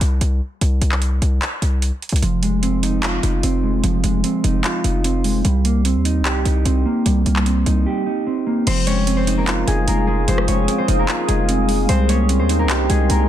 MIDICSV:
0, 0, Header, 1, 6, 480
1, 0, Start_track
1, 0, Key_signature, -4, "minor"
1, 0, Tempo, 402685
1, 733, Time_signature, 4, 2, 24, 8
1, 15838, End_track
2, 0, Start_track
2, 0, Title_t, "Ambient pad"
2, 0, Program_c, 0, 92
2, 10335, Note_on_c, 0, 68, 79
2, 10335, Note_on_c, 0, 77, 74
2, 10335, Note_on_c, 0, 87, 92
2, 14135, Note_off_c, 0, 68, 0
2, 14135, Note_off_c, 0, 87, 0
2, 14136, Note_off_c, 0, 77, 0
2, 14174, Note_on_c, 0, 70, 82
2, 14175, Note_on_c, 0, 75, 73
2, 14175, Note_on_c, 0, 84, 88
2, 15838, Note_off_c, 0, 70, 0
2, 15838, Note_off_c, 0, 75, 0
2, 15838, Note_off_c, 0, 84, 0
2, 15838, End_track
3, 0, Start_track
3, 0, Title_t, "Harp"
3, 0, Program_c, 1, 46
3, 10337, Note_on_c, 1, 72, 122
3, 10347, Note_on_c, 1, 60, 99
3, 10570, Note_on_c, 1, 73, 93
3, 10580, Note_on_c, 1, 61, 69
3, 10642, Note_off_c, 1, 60, 0
3, 10642, Note_off_c, 1, 72, 0
3, 10927, Note_on_c, 1, 72, 80
3, 10937, Note_on_c, 1, 60, 60
3, 10999, Note_off_c, 1, 61, 0
3, 10999, Note_off_c, 1, 73, 0
3, 11175, Note_on_c, 1, 70, 75
3, 11184, Note_on_c, 1, 58, 59
3, 11532, Note_on_c, 1, 68, 90
3, 11542, Note_on_c, 1, 56, 72
3, 11766, Note_off_c, 1, 70, 0
3, 11771, Note_on_c, 1, 70, 85
3, 11776, Note_off_c, 1, 58, 0
3, 11781, Note_on_c, 1, 58, 63
3, 12000, Note_off_c, 1, 56, 0
3, 12000, Note_off_c, 1, 68, 0
3, 12004, Note_on_c, 1, 68, 78
3, 12014, Note_on_c, 1, 56, 65
3, 12255, Note_off_c, 1, 72, 0
3, 12260, Note_on_c, 1, 72, 108
3, 12264, Note_off_c, 1, 60, 0
3, 12269, Note_on_c, 1, 60, 80
3, 12491, Note_on_c, 1, 73, 87
3, 12501, Note_on_c, 1, 61, 63
3, 12563, Note_off_c, 1, 60, 0
3, 12563, Note_off_c, 1, 72, 0
3, 12853, Note_on_c, 1, 72, 77
3, 12863, Note_on_c, 1, 60, 63
3, 12925, Note_off_c, 1, 61, 0
3, 12925, Note_off_c, 1, 73, 0
3, 13096, Note_off_c, 1, 70, 0
3, 13101, Note_on_c, 1, 70, 81
3, 13106, Note_off_c, 1, 58, 0
3, 13111, Note_on_c, 1, 58, 59
3, 13440, Note_off_c, 1, 68, 0
3, 13441, Note_off_c, 1, 56, 0
3, 13445, Note_on_c, 1, 68, 86
3, 13455, Note_on_c, 1, 56, 69
3, 14165, Note_off_c, 1, 72, 0
3, 14170, Note_on_c, 1, 72, 121
3, 14175, Note_off_c, 1, 60, 0
3, 14179, Note_on_c, 1, 60, 84
3, 14233, Note_off_c, 1, 56, 0
3, 14415, Note_on_c, 1, 73, 88
3, 14424, Note_on_c, 1, 61, 71
3, 14486, Note_off_c, 1, 60, 0
3, 14486, Note_off_c, 1, 72, 0
3, 14774, Note_on_c, 1, 72, 74
3, 14784, Note_on_c, 1, 60, 63
3, 14845, Note_off_c, 1, 61, 0
3, 14845, Note_off_c, 1, 73, 0
3, 15005, Note_off_c, 1, 70, 0
3, 15010, Note_on_c, 1, 70, 82
3, 15015, Note_off_c, 1, 58, 0
3, 15019, Note_on_c, 1, 58, 58
3, 15370, Note_off_c, 1, 68, 0
3, 15375, Note_on_c, 1, 68, 95
3, 15385, Note_on_c, 1, 56, 72
3, 15618, Note_off_c, 1, 70, 0
3, 15623, Note_on_c, 1, 70, 85
3, 15628, Note_off_c, 1, 58, 0
3, 15632, Note_on_c, 1, 58, 68
3, 15838, Note_off_c, 1, 56, 0
3, 15838, Note_off_c, 1, 58, 0
3, 15838, Note_off_c, 1, 60, 0
3, 15838, Note_off_c, 1, 68, 0
3, 15838, Note_off_c, 1, 70, 0
3, 15838, Note_off_c, 1, 72, 0
3, 15838, End_track
4, 0, Start_track
4, 0, Title_t, "Clean electric guitar"
4, 0, Program_c, 2, 27
4, 2652, Note_on_c, 2, 53, 94
4, 2892, Note_on_c, 2, 56, 85
4, 3132, Note_on_c, 2, 60, 86
4, 3373, Note_on_c, 2, 63, 86
4, 3611, Note_on_c, 2, 65, 97
4, 3838, Note_off_c, 2, 63, 0
4, 3852, Note_on_c, 2, 63, 82
4, 3853, Note_off_c, 2, 53, 0
4, 4078, Note_off_c, 2, 60, 0
4, 4092, Note_on_c, 2, 60, 92
4, 4093, Note_off_c, 2, 56, 0
4, 4332, Note_on_c, 2, 56, 75
4, 4573, Note_on_c, 2, 53, 104
4, 4798, Note_off_c, 2, 56, 0
4, 4812, Note_off_c, 2, 65, 0
4, 4812, Note_on_c, 2, 56, 80
4, 5038, Note_off_c, 2, 60, 0
4, 5052, Note_on_c, 2, 60, 83
4, 5053, Note_off_c, 2, 63, 0
4, 5292, Note_on_c, 2, 63, 84
4, 5533, Note_on_c, 2, 65, 98
4, 5759, Note_off_c, 2, 63, 0
4, 5773, Note_off_c, 2, 53, 0
4, 5774, Note_on_c, 2, 63, 78
4, 5999, Note_off_c, 2, 60, 0
4, 6012, Note_off_c, 2, 56, 0
4, 6013, Note_on_c, 2, 60, 89
4, 6252, Note_on_c, 2, 56, 81
4, 6489, Note_off_c, 2, 56, 0
4, 6493, Note_off_c, 2, 60, 0
4, 6493, Note_off_c, 2, 65, 0
4, 6494, Note_off_c, 2, 63, 0
4, 6494, Note_on_c, 2, 55, 83
4, 6734, Note_on_c, 2, 58, 75
4, 6969, Note_off_c, 2, 58, 0
4, 6973, Note_on_c, 2, 60, 81
4, 7213, Note_on_c, 2, 63, 92
4, 7453, Note_on_c, 2, 67, 103
4, 7679, Note_off_c, 2, 63, 0
4, 7693, Note_on_c, 2, 63, 88
4, 7694, Note_off_c, 2, 55, 0
4, 7918, Note_off_c, 2, 60, 0
4, 7933, Note_on_c, 2, 60, 92
4, 8173, Note_on_c, 2, 58, 86
4, 8413, Note_on_c, 2, 55, 94
4, 8639, Note_off_c, 2, 58, 0
4, 8653, Note_off_c, 2, 67, 0
4, 8654, Note_on_c, 2, 58, 85
4, 8878, Note_off_c, 2, 60, 0
4, 8893, Note_off_c, 2, 63, 0
4, 8893, Note_on_c, 2, 60, 96
4, 9132, Note_on_c, 2, 63, 87
4, 9373, Note_on_c, 2, 67, 102
4, 9598, Note_off_c, 2, 63, 0
4, 9612, Note_on_c, 2, 63, 84
4, 9613, Note_off_c, 2, 55, 0
4, 9839, Note_off_c, 2, 60, 0
4, 9853, Note_off_c, 2, 58, 0
4, 9853, Note_on_c, 2, 60, 82
4, 10092, Note_on_c, 2, 58, 77
4, 10333, Note_off_c, 2, 58, 0
4, 10333, Note_off_c, 2, 60, 0
4, 10333, Note_off_c, 2, 63, 0
4, 10333, Note_off_c, 2, 67, 0
4, 10333, Note_on_c, 2, 53, 96
4, 10573, Note_on_c, 2, 56, 89
4, 10813, Note_on_c, 2, 60, 91
4, 11054, Note_on_c, 2, 63, 91
4, 11291, Note_on_c, 2, 65, 102
4, 11518, Note_off_c, 2, 63, 0
4, 11532, Note_on_c, 2, 63, 84
4, 11533, Note_off_c, 2, 53, 0
4, 11773, Note_off_c, 2, 56, 0
4, 12008, Note_off_c, 2, 60, 0
4, 12013, Note_on_c, 2, 56, 78
4, 12253, Note_on_c, 2, 53, 102
4, 12477, Note_off_c, 2, 56, 0
4, 12491, Note_on_c, 2, 56, 82
4, 12492, Note_off_c, 2, 65, 0
4, 12727, Note_off_c, 2, 63, 0
4, 12732, Note_on_c, 2, 60, 86
4, 12968, Note_off_c, 2, 60, 0
4, 12972, Note_on_c, 2, 63, 86
4, 13213, Note_on_c, 2, 65, 102
4, 13439, Note_off_c, 2, 63, 0
4, 13453, Note_off_c, 2, 53, 0
4, 13453, Note_on_c, 2, 63, 84
4, 13687, Note_off_c, 2, 56, 0
4, 13692, Note_on_c, 2, 60, 90
4, 13932, Note_on_c, 2, 56, 85
4, 14168, Note_off_c, 2, 56, 0
4, 14173, Note_off_c, 2, 60, 0
4, 14173, Note_off_c, 2, 63, 0
4, 14173, Note_off_c, 2, 65, 0
4, 14173, Note_on_c, 2, 55, 86
4, 14414, Note_on_c, 2, 58, 82
4, 14649, Note_off_c, 2, 58, 0
4, 14654, Note_on_c, 2, 60, 85
4, 14893, Note_on_c, 2, 63, 88
4, 15134, Note_on_c, 2, 67, 109
4, 15359, Note_off_c, 2, 63, 0
4, 15373, Note_off_c, 2, 55, 0
4, 15373, Note_on_c, 2, 63, 91
4, 15838, Note_off_c, 2, 60, 0
4, 15838, Note_off_c, 2, 63, 0
4, 15838, Note_off_c, 2, 67, 0
4, 15838, End_track
5, 0, Start_track
5, 0, Title_t, "808-style bass"
5, 0, Program_c, 3, 38
5, 13, Note_on_c, 3, 36, 100
5, 243, Note_off_c, 3, 36, 0
5, 253, Note_on_c, 3, 36, 108
5, 483, Note_off_c, 3, 36, 0
5, 732, Note_on_c, 3, 36, 116
5, 963, Note_off_c, 3, 36, 0
5, 972, Note_on_c, 3, 36, 107
5, 1433, Note_off_c, 3, 36, 0
5, 1452, Note_on_c, 3, 36, 109
5, 1683, Note_off_c, 3, 36, 0
5, 1932, Note_on_c, 3, 36, 103
5, 2278, Note_off_c, 3, 36, 0
5, 2532, Note_on_c, 3, 36, 100
5, 2648, Note_off_c, 3, 36, 0
5, 2653, Note_on_c, 3, 29, 112
5, 3805, Note_off_c, 3, 29, 0
5, 3853, Note_on_c, 3, 29, 101
5, 4083, Note_off_c, 3, 29, 0
5, 4093, Note_on_c, 3, 29, 110
5, 4554, Note_off_c, 3, 29, 0
5, 4572, Note_on_c, 3, 29, 110
5, 4803, Note_off_c, 3, 29, 0
5, 4813, Note_on_c, 3, 29, 103
5, 5043, Note_off_c, 3, 29, 0
5, 5293, Note_on_c, 3, 29, 110
5, 5523, Note_off_c, 3, 29, 0
5, 5772, Note_on_c, 3, 29, 99
5, 6464, Note_off_c, 3, 29, 0
5, 6493, Note_on_c, 3, 36, 105
5, 7093, Note_on_c, 3, 39, 93
5, 7111, Note_off_c, 3, 36, 0
5, 7393, Note_on_c, 3, 36, 103
5, 7411, Note_off_c, 3, 39, 0
5, 7678, Note_off_c, 3, 36, 0
5, 7694, Note_on_c, 3, 36, 99
5, 7924, Note_off_c, 3, 36, 0
5, 7933, Note_on_c, 3, 36, 107
5, 8163, Note_off_c, 3, 36, 0
5, 8413, Note_on_c, 3, 36, 111
5, 8644, Note_off_c, 3, 36, 0
5, 8653, Note_on_c, 3, 36, 105
5, 9114, Note_off_c, 3, 36, 0
5, 9133, Note_on_c, 3, 36, 107
5, 9364, Note_off_c, 3, 36, 0
5, 10334, Note_on_c, 3, 29, 116
5, 11486, Note_off_c, 3, 29, 0
5, 11533, Note_on_c, 3, 29, 102
5, 11763, Note_off_c, 3, 29, 0
5, 11773, Note_on_c, 3, 29, 108
5, 12234, Note_off_c, 3, 29, 0
5, 12253, Note_on_c, 3, 29, 117
5, 12484, Note_off_c, 3, 29, 0
5, 12493, Note_on_c, 3, 29, 105
5, 12723, Note_off_c, 3, 29, 0
5, 12972, Note_on_c, 3, 29, 108
5, 13203, Note_off_c, 3, 29, 0
5, 13453, Note_on_c, 3, 29, 103
5, 14144, Note_off_c, 3, 29, 0
5, 14173, Note_on_c, 3, 36, 111
5, 14773, Note_on_c, 3, 39, 97
5, 14791, Note_off_c, 3, 36, 0
5, 15073, Note_on_c, 3, 36, 103
5, 15091, Note_off_c, 3, 39, 0
5, 15358, Note_off_c, 3, 36, 0
5, 15373, Note_on_c, 3, 36, 102
5, 15603, Note_off_c, 3, 36, 0
5, 15612, Note_on_c, 3, 36, 112
5, 15838, Note_off_c, 3, 36, 0
5, 15838, End_track
6, 0, Start_track
6, 0, Title_t, "Drums"
6, 13, Note_on_c, 9, 42, 85
6, 132, Note_off_c, 9, 42, 0
6, 252, Note_on_c, 9, 42, 90
6, 371, Note_off_c, 9, 42, 0
6, 732, Note_on_c, 9, 42, 77
6, 851, Note_off_c, 9, 42, 0
6, 972, Note_on_c, 9, 42, 69
6, 1091, Note_off_c, 9, 42, 0
6, 1092, Note_on_c, 9, 39, 70
6, 1211, Note_on_c, 9, 42, 76
6, 1212, Note_off_c, 9, 39, 0
6, 1331, Note_off_c, 9, 42, 0
6, 1454, Note_on_c, 9, 42, 68
6, 1573, Note_off_c, 9, 42, 0
6, 1692, Note_on_c, 9, 42, 66
6, 1693, Note_on_c, 9, 39, 122
6, 1811, Note_off_c, 9, 42, 0
6, 1813, Note_off_c, 9, 39, 0
6, 1933, Note_on_c, 9, 42, 93
6, 2052, Note_off_c, 9, 42, 0
6, 2173, Note_on_c, 9, 42, 93
6, 2292, Note_off_c, 9, 42, 0
6, 2413, Note_on_c, 9, 42, 50
6, 2493, Note_off_c, 9, 42, 0
6, 2493, Note_on_c, 9, 42, 65
6, 2573, Note_off_c, 9, 42, 0
6, 2573, Note_on_c, 9, 42, 80
6, 2652, Note_off_c, 9, 42, 0
6, 2652, Note_on_c, 9, 42, 79
6, 2771, Note_off_c, 9, 42, 0
6, 2892, Note_on_c, 9, 42, 72
6, 3011, Note_off_c, 9, 42, 0
6, 3132, Note_on_c, 9, 42, 76
6, 3252, Note_off_c, 9, 42, 0
6, 3374, Note_on_c, 9, 42, 69
6, 3493, Note_off_c, 9, 42, 0
6, 3611, Note_on_c, 9, 42, 68
6, 3613, Note_on_c, 9, 39, 120
6, 3730, Note_off_c, 9, 42, 0
6, 3732, Note_off_c, 9, 39, 0
6, 3853, Note_on_c, 9, 42, 84
6, 3972, Note_off_c, 9, 42, 0
6, 4092, Note_on_c, 9, 42, 92
6, 4212, Note_off_c, 9, 42, 0
6, 4572, Note_on_c, 9, 42, 79
6, 4691, Note_off_c, 9, 42, 0
6, 4812, Note_on_c, 9, 42, 72
6, 4931, Note_off_c, 9, 42, 0
6, 5052, Note_on_c, 9, 42, 75
6, 5171, Note_off_c, 9, 42, 0
6, 5294, Note_on_c, 9, 42, 66
6, 5413, Note_off_c, 9, 42, 0
6, 5532, Note_on_c, 9, 42, 68
6, 5533, Note_on_c, 9, 39, 121
6, 5651, Note_off_c, 9, 42, 0
6, 5652, Note_off_c, 9, 39, 0
6, 5773, Note_on_c, 9, 42, 96
6, 5892, Note_off_c, 9, 42, 0
6, 6012, Note_on_c, 9, 42, 95
6, 6132, Note_off_c, 9, 42, 0
6, 6251, Note_on_c, 9, 46, 62
6, 6370, Note_off_c, 9, 46, 0
6, 6493, Note_on_c, 9, 42, 80
6, 6612, Note_off_c, 9, 42, 0
6, 6733, Note_on_c, 9, 42, 72
6, 6852, Note_off_c, 9, 42, 0
6, 6973, Note_on_c, 9, 42, 76
6, 7092, Note_off_c, 9, 42, 0
6, 7214, Note_on_c, 9, 42, 68
6, 7333, Note_off_c, 9, 42, 0
6, 7453, Note_on_c, 9, 42, 66
6, 7454, Note_on_c, 9, 39, 116
6, 7572, Note_off_c, 9, 42, 0
6, 7574, Note_off_c, 9, 39, 0
6, 7694, Note_on_c, 9, 42, 86
6, 7813, Note_off_c, 9, 42, 0
6, 7933, Note_on_c, 9, 42, 92
6, 8052, Note_off_c, 9, 42, 0
6, 8413, Note_on_c, 9, 42, 80
6, 8532, Note_off_c, 9, 42, 0
6, 8653, Note_on_c, 9, 42, 72
6, 8773, Note_off_c, 9, 42, 0
6, 8774, Note_on_c, 9, 39, 72
6, 8893, Note_off_c, 9, 39, 0
6, 8894, Note_on_c, 9, 42, 77
6, 9013, Note_off_c, 9, 42, 0
6, 9135, Note_on_c, 9, 42, 64
6, 9254, Note_off_c, 9, 42, 0
6, 10333, Note_on_c, 9, 42, 82
6, 10333, Note_on_c, 9, 49, 101
6, 10452, Note_off_c, 9, 42, 0
6, 10453, Note_off_c, 9, 49, 0
6, 10573, Note_on_c, 9, 42, 74
6, 10692, Note_off_c, 9, 42, 0
6, 10813, Note_on_c, 9, 42, 76
6, 10932, Note_off_c, 9, 42, 0
6, 11054, Note_on_c, 9, 42, 72
6, 11173, Note_off_c, 9, 42, 0
6, 11292, Note_on_c, 9, 42, 68
6, 11294, Note_on_c, 9, 39, 121
6, 11411, Note_off_c, 9, 42, 0
6, 11413, Note_off_c, 9, 39, 0
6, 11533, Note_on_c, 9, 42, 90
6, 11652, Note_off_c, 9, 42, 0
6, 11772, Note_on_c, 9, 42, 98
6, 11891, Note_off_c, 9, 42, 0
6, 12252, Note_on_c, 9, 42, 77
6, 12372, Note_off_c, 9, 42, 0
6, 12374, Note_on_c, 9, 37, 91
6, 12492, Note_on_c, 9, 42, 75
6, 12493, Note_off_c, 9, 37, 0
6, 12612, Note_off_c, 9, 42, 0
6, 12733, Note_on_c, 9, 42, 76
6, 12852, Note_off_c, 9, 42, 0
6, 12973, Note_on_c, 9, 42, 67
6, 13093, Note_off_c, 9, 42, 0
6, 13211, Note_on_c, 9, 42, 69
6, 13213, Note_on_c, 9, 39, 127
6, 13330, Note_off_c, 9, 42, 0
6, 13332, Note_off_c, 9, 39, 0
6, 13452, Note_on_c, 9, 42, 95
6, 13572, Note_off_c, 9, 42, 0
6, 13692, Note_on_c, 9, 42, 95
6, 13811, Note_off_c, 9, 42, 0
6, 13930, Note_on_c, 9, 46, 62
6, 14049, Note_off_c, 9, 46, 0
6, 14172, Note_on_c, 9, 42, 80
6, 14291, Note_off_c, 9, 42, 0
6, 14412, Note_on_c, 9, 42, 76
6, 14531, Note_off_c, 9, 42, 0
6, 14652, Note_on_c, 9, 42, 78
6, 14771, Note_off_c, 9, 42, 0
6, 14893, Note_on_c, 9, 42, 69
6, 15012, Note_off_c, 9, 42, 0
6, 15131, Note_on_c, 9, 42, 68
6, 15133, Note_on_c, 9, 39, 124
6, 15250, Note_off_c, 9, 42, 0
6, 15252, Note_off_c, 9, 39, 0
6, 15373, Note_on_c, 9, 42, 89
6, 15492, Note_off_c, 9, 42, 0
6, 15612, Note_on_c, 9, 42, 92
6, 15731, Note_off_c, 9, 42, 0
6, 15838, End_track
0, 0, End_of_file